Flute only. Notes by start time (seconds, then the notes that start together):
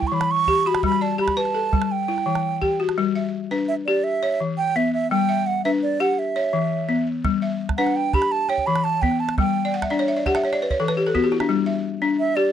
0.00 G5
0.07 C#6
0.14 B5
0.31 C#6
0.67 B5
0.85 B5
1.02 A5
1.21 B5
1.38 A5
1.92 G5
3.68 E5
3.86 D5
4.04 E5
4.58 G5
4.76 E5
4.94 E5
5.11 G5
5.46 F#5
5.65 E5
5.83 D5
6.01 F#5
6.19 E5
7.77 F#5
7.96 G5
8.14 B5
8.32 A5
8.49 G5
8.66 B5
8.84 A5
9.02 G5
9.20 A5
9.39 G5
12.19 E5
12.36 D5